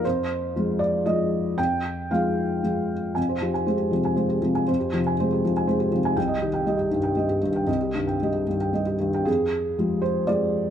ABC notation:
X:1
M:3/4
L:1/16
Q:1/4=118
K:Fdor
V:1 name="Felt piano"
c6 d2 e4 | g4 f6 z2 | a c G a c G C, a c G C, a | c G C, a c G C, a c G C, a |
g e G g e G G,, g e G G,, g | e G G,, g e G G,, g e G G,, g | A6 c2 d4 |]
V:2 name="Felt piano" clef=bass
F,,4 [F,A,F]4 [F,A,F]4 | F,,4 [F,A,F]4 [F,A,F]4 | F,,2 F,2 A,2 F,2 A,2 F,2 | F,,2 F,2 A,2 F,2 A,2 F,2 |
C,,2 E,2 G,2 E,2 G,2 E,2 | C,,2 E,2 G,2 E,2 G,2 E,2 | F,,4 [F,A,G]4 [F,A,G]4 |]